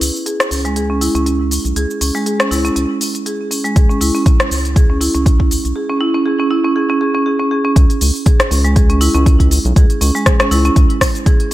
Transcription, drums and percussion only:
0.01 open hi-hat medium
0.01 shaker medium
0.16 shaker soft
0.26 closed hi-hat medium
0.26 shaker soft
0.40 cross-stick loud
0.40 closed hi-hat soft
0.40 shaker soft
0.51 open hi-hat medium
0.51 shaker medium
0.65 closed hi-hat soft
0.65 shaker soft
0.76 closed hi-hat medium
0.76 shaker medium
1.01 open hi-hat medium
1.01 shaker medium
1.15 closed hi-hat soft
1.15 shaker soft
1.26 closed hi-hat medium
1.26 shaker soft
1.51 open hi-hat medium
1.51 shaker medium
1.65 closed hi-hat soft
1.65 shaker soft
1.76 closed hi-hat medium
1.76 shaker medium
1.91 shaker soft
2.01 open hi-hat medium
2.01 shaker medium
2.16 shaker soft
2.26 closed hi-hat medium
2.26 shaker medium
2.40 cross-stick loud
2.40 closed hi-hat soft
2.40 shaker soft
2.51 open hi-hat medium
2.51 shaker loud
2.65 closed hi-hat soft
2.65 shaker soft
2.76 closed hi-hat medium
2.76 shaker medium
3.01 open hi-hat medium
3.01 shaker medium
3.15 closed hi-hat soft
3.15 shaker soft
3.26 closed hi-hat medium
3.26 shaker medium
3.51 open hi-hat medium
3.51 shaker loud
3.65 closed hi-hat soft
3.65 shaker soft
3.76 kick loud
3.76 closed hi-hat medium
3.76 shaker medium
3.90 shaker soft
4.01 open hi-hat medium
4.01 shaker loud
4.15 shaker soft
4.26 kick loud
4.26 closed hi-hat medium
4.26 shaker medium
4.40 cross-stick loud
4.40 closed hi-hat soft
4.40 shaker soft
4.51 open hi-hat medium
4.51 shaker loud
4.65 closed hi-hat soft
4.65 shaker soft
4.76 kick loud
4.76 closed hi-hat medium
4.76 shaker medium
5.01 open hi-hat medium
5.01 shaker loud
5.15 closed hi-hat soft
5.15 shaker soft
5.26 kick loud
5.26 closed hi-hat medium
5.26 shaker medium
5.40 kick medium
5.51 open hi-hat medium
5.51 shaker loud
5.65 closed hi-hat soft
5.65 shaker soft
7.76 kick loud
7.76 closed hi-hat medium
7.76 shaker medium
7.90 closed hi-hat soft
7.90 shaker soft
8.01 open hi-hat medium
8.01 shaker medium
8.15 shaker soft
8.26 kick loud
8.26 closed hi-hat medium
8.26 shaker medium
8.40 cross-stick loud
8.40 closed hi-hat soft
8.40 shaker soft
8.51 open hi-hat medium
8.51 shaker medium
8.65 closed hi-hat soft
8.65 shaker soft
8.76 kick loud
8.76 closed hi-hat medium
8.76 shaker medium
8.90 closed hi-hat soft
9.01 open hi-hat medium
9.01 shaker medium
9.15 closed hi-hat soft
9.15 shaker soft
9.26 kick loud
9.26 closed hi-hat medium
9.26 shaker medium
9.40 kick medium
9.40 closed hi-hat soft
9.51 open hi-hat medium
9.51 shaker medium
9.65 closed hi-hat soft
9.65 shaker soft
9.76 kick loud
9.76 closed hi-hat medium
9.76 shaker medium
9.90 closed hi-hat soft
9.90 shaker soft
10.01 open hi-hat medium
10.01 shaker loud
10.16 shaker soft
10.26 kick loud
10.26 cross-stick medium
10.26 closed hi-hat medium
10.26 shaker medium
10.40 cross-stick loud
10.40 closed hi-hat soft
10.40 shaker soft
10.51 open hi-hat medium
10.51 shaker loud
10.65 closed hi-hat soft
10.65 shaker soft
10.76 kick loud
10.76 closed hi-hat medium
10.76 shaker medium
10.90 closed hi-hat soft
11.01 kick medium
11.01 cross-stick medium
11.01 open hi-hat medium
11.01 shaker loud
11.15 closed hi-hat soft
11.15 shaker soft
11.26 kick loud
11.26 closed hi-hat medium
11.26 shaker medium
11.40 closed hi-hat soft

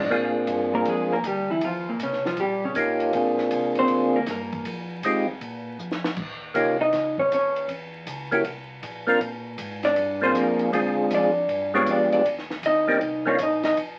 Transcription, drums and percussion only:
0.10 kick soft
0.47 kick soft
0.47 hi-hat pedal medium
0.47 ride medium
0.85 kick soft
0.85 ride medium
1.24 kick soft
1.24 hi-hat pedal medium
1.24 ride medium
1.61 kick soft
1.61 ride medium
2.00 kick soft
2.00 hi-hat pedal medium
2.00 ride medium
2.13 snare soft
2.25 snare soft
2.37 kick soft
2.37 ride medium
2.75 kick soft
2.75 hi-hat pedal medium
2.75 ride medium
3.00 ride medium
3.13 kick soft
3.13 ride medium
3.38 snare soft
3.51 kick soft
3.51 hi-hat pedal medium
3.51 ride medium
3.75 ride medium
3.88 kick soft
3.88 ride medium
4.26 kick soft
4.26 snare soft
4.26 hi-hat pedal medium
4.26 ride medium
4.53 kick medium
4.53 ride medium
4.65 kick soft
4.65 ride medium
5.03 kick soft
5.03 hi-hat pedal medium
5.03 ride medium
5.41 kick soft
5.41 ride medium
5.79 hi-hat pedal medium
5.91 snare medium
6.04 snare medium
6.16 kick medium
6.16 crash medium
6.55 kick soft
6.55 hi-hat pedal medium
6.55 ride medium
6.93 kick soft
6.93 snare soft
6.93 ride medium
7.18 kick medium
7.31 kick soft
7.31 hi-hat pedal medium
7.31 ride medium
7.56 ride medium
7.69 kick soft
7.69 ride medium
8.07 kick soft
8.07 hi-hat pedal medium
8.07 ride medium
8.32 ride medium
8.45 kick soft
8.45 ride medium
8.83 kick soft
8.83 hi-hat pedal medium
8.83 ride medium
9.21 kick soft
9.21 ride medium
9.58 kick soft
9.58 hi-hat pedal medium
9.58 ride medium
9.83 snare soft
9.83 ride medium
9.96 kick soft
9.96 ride medium
10.35 kick soft
10.35 hi-hat pedal medium
10.35 ride medium
10.59 ride medium
10.73 kick soft
10.73 ride medium
11.11 kick soft
11.11 hi-hat pedal medium
11.11 ride medium
11.49 kick soft
11.49 ride medium
11.86 kick soft
11.86 hi-hat pedal medium
11.86 ride medium
12.12 ride soft
12.25 kick soft
12.25 ride medium
12.39 snare soft
12.50 snare soft
12.63 kick soft
12.63 hi-hat pedal medium
12.63 ride medium
13.01 kick soft
13.01 ride medium
13.39 kick soft
13.39 hi-hat pedal medium
13.39 ride medium
13.63 snare medium
13.63 ride medium
13.77 kick soft
13.77 ride medium

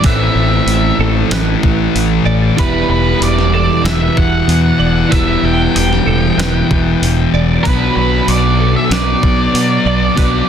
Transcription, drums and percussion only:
0.04 kick loud
0.04 open hi-hat medium
0.68 open hi-hat medium
1.31 snare loud
1.31 open hi-hat medium
1.63 kick medium
1.96 open hi-hat soft
2.58 kick loud
2.58 open hi-hat medium
3.22 open hi-hat medium
3.39 snare soft
3.85 snare loud
3.85 open hi-hat medium
4.17 kick medium
4.49 open hi-hat medium
5.12 kick loud
5.12 open hi-hat medium
5.76 open hi-hat medium
5.93 snare soft
6.39 snare loud
6.39 open hi-hat medium
6.71 kick medium
7.03 open hi-hat medium
7.65 kick loud
7.65 open hi-hat soft
8.28 open hi-hat medium
8.91 snare loud
8.91 open hi-hat medium
9.23 kick medium
9.55 open hi-hat medium
10.17 kick loud
10.17 open hi-hat medium

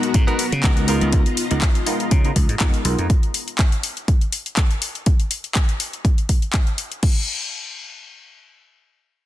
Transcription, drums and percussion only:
0.03 closed hi-hat soft
0.14 kick loud
0.14 closed hi-hat medium
0.28 closed hi-hat soft
0.39 open hi-hat loud
0.52 closed hi-hat soft
0.63 kick loud
0.63 clap loud
0.63 closed hi-hat medium
0.77 closed hi-hat soft
0.88 open hi-hat loud
1.01 closed hi-hat soft
1.13 kick loud
1.13 closed hi-hat medium
1.26 closed hi-hat soft
1.37 open hi-hat loud
1.51 closed hi-hat soft
1.62 kick loud
1.62 clap loud
1.62 closed hi-hat medium
1.75 closed hi-hat soft
1.87 open hi-hat loud
2.00 closed hi-hat soft
2.11 kick loud
2.11 closed hi-hat medium
2.25 closed hi-hat soft
2.36 kick medium
2.36 open hi-hat loud
2.49 closed hi-hat soft
2.60 kick loud
2.60 clap loud
2.60 closed hi-hat medium
2.74 closed hi-hat soft
2.85 open hi-hat loud
2.99 closed hi-hat soft
3.10 kick loud
3.10 closed hi-hat medium
3.23 closed hi-hat soft
3.34 open hi-hat loud
3.48 closed hi-hat soft
3.59 kick loud
3.59 clap loud
3.59 closed hi-hat medium
3.72 closed hi-hat soft
3.83 open hi-hat loud
3.97 closed hi-hat soft
4.08 kick loud
4.08 closed hi-hat medium
4.21 closed hi-hat soft
4.32 open hi-hat loud
4.46 closed hi-hat soft
4.57 kick loud
4.57 clap loud
4.57 closed hi-hat medium
4.71 closed hi-hat soft
4.82 open hi-hat loud
4.95 closed hi-hat soft
5.06 kick loud
5.06 closed hi-hat medium
5.20 closed hi-hat soft
5.31 open hi-hat loud
5.44 closed hi-hat soft
5.55 kick loud
5.55 clap loud
5.55 closed hi-hat medium
5.69 closed hi-hat soft
5.80 open hi-hat loud
5.93 closed hi-hat soft
6.05 kick loud
6.05 closed hi-hat medium
6.18 closed hi-hat soft
6.29 kick medium
6.29 open hi-hat loud
6.42 closed hi-hat soft
6.53 kick loud
6.53 clap loud
6.53 closed hi-hat medium
6.67 closed hi-hat soft
6.78 open hi-hat loud
6.92 closed hi-hat soft
7.03 kick loud
7.03 crash medium

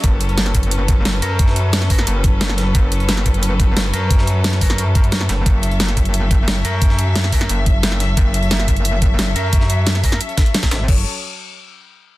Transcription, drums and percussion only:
0.04 kick loud
0.04 closed hi-hat medium
0.21 closed hi-hat medium
0.29 closed hi-hat soft
0.38 snare loud
0.38 closed hi-hat medium
0.46 snare soft
0.46 closed hi-hat soft
0.54 kick medium
0.54 closed hi-hat medium
0.63 closed hi-hat soft
0.71 closed hi-hat medium
0.71 closed hi-hat loud
0.88 kick loud
0.88 closed hi-hat medium
1.05 snare loud
1.05 closed hi-hat medium
1.22 closed hi-hat medium
1.39 kick loud
1.39 closed hi-hat medium
1.48 snare soft
1.56 closed hi-hat medium
1.73 snare loud
1.73 closed hi-hat medium
1.73 closed hi-hat loud
1.82 snare soft
1.82 closed hi-hat soft
1.90 kick medium
1.90 closed hi-hat medium
1.90 open hi-hat medium
1.99 snare medium
1.99 closed hi-hat soft
2.07 closed hi-hat medium
2.24 kick loud
2.24 closed hi-hat medium
2.41 snare loud
2.41 closed hi-hat medium
2.49 snare medium
2.58 snare soft
2.58 closed hi-hat medium
2.75 kick loud
2.75 closed hi-hat medium
2.92 closed hi-hat medium
3.00 closed hi-hat soft
3.09 snare loud
3.09 closed hi-hat medium
3.17 snare soft
3.17 closed hi-hat soft
3.26 kick medium
3.26 closed hi-hat medium
3.34 closed hi-hat soft
3.43 closed hi-hat medium
3.60 kick loud
3.60 closed hi-hat medium
3.77 snare loud
3.77 closed hi-hat medium
3.94 closed hi-hat medium
4.10 kick loud
4.10 closed hi-hat medium
4.19 snare soft
4.27 closed hi-hat medium
4.44 snare loud
4.44 closed hi-hat medium
4.53 snare soft
4.53 closed hi-hat soft
4.61 kick medium
4.61 closed hi-hat medium
4.61 open hi-hat medium
4.70 snare medium
4.70 closed hi-hat soft
4.78 closed hi-hat medium
4.95 kick loud
4.95 closed hi-hat medium
5.04 closed hi-hat soft
5.12 snare loud
5.12 closed hi-hat medium
5.21 snare medium
5.29 snare soft
5.29 closed hi-hat medium
5.46 kick loud
5.46 closed hi-hat medium
5.63 closed hi-hat medium
5.71 closed hi-hat soft
5.80 snare loud
5.80 closed hi-hat medium
5.88 snare soft
5.88 closed hi-hat soft
5.97 kick medium
5.97 closed hi-hat medium
6.05 closed hi-hat soft
6.14 closed hi-hat medium
6.31 kick loud
6.31 closed hi-hat medium
6.48 snare loud
6.48 closed hi-hat medium
6.65 closed hi-hat medium
6.82 kick loud
6.82 closed hi-hat medium
6.90 snare soft
6.99 closed hi-hat medium
7.16 snare loud
7.16 closed hi-hat medium
7.24 snare soft
7.24 closed hi-hat soft
7.32 kick medium
7.32 closed hi-hat medium
7.32 open hi-hat medium
7.41 snare medium
7.41 closed hi-hat soft
7.49 closed hi-hat medium
7.66 kick loud
7.66 closed hi-hat medium
7.83 snare loud
7.83 closed hi-hat medium
7.83 closed hi-hat loud
7.92 snare medium
8.00 snare soft
8.00 closed hi-hat medium
8.17 kick loud
8.17 closed hi-hat loud
8.17 closed hi-hat medium
8.34 closed hi-hat medium
8.43 closed hi-hat soft
8.51 snare loud
8.51 closed hi-hat medium
8.51 closed hi-hat loud
8.60 snare soft
8.60 closed hi-hat soft
8.68 kick medium
8.68 closed hi-hat medium
8.77 closed hi-hat soft
8.85 closed hi-hat medium
8.85 closed hi-hat loud
9.02 kick loud
9.02 closed hi-hat medium
9.19 snare loud
9.19 closed hi-hat loud
9.19 closed hi-hat medium
9.36 closed hi-hat medium
9.53 kick loud
9.53 closed hi-hat medium
9.53 closed hi-hat loud
9.61 snare soft
9.70 closed hi-hat medium
9.86 snare loud
9.86 closed hi-hat medium
9.86 closed hi-hat loud
9.95 snare soft
9.95 closed hi-hat soft
10.04 kick medium
10.04 closed hi-hat medium
10.04 open hi-hat medium
10.12 snare medium
10.12 closed hi-hat soft
10.21 closed hi-hat medium
10.21 closed hi-hat loud
10.29 closed hi-hat soft
10.38 kick loud
10.38 snare loud
10.38 closed hi-hat medium
10.46 closed hi-hat soft
10.54 snare loud
10.54 closed hi-hat medium
10.63 kick medium
10.63 snare loud
10.63 snare medium
10.63 closed hi-hat medium
10.71 snare loud
10.71 closed hi-hat medium
10.88 kick loud
10.88 crash medium

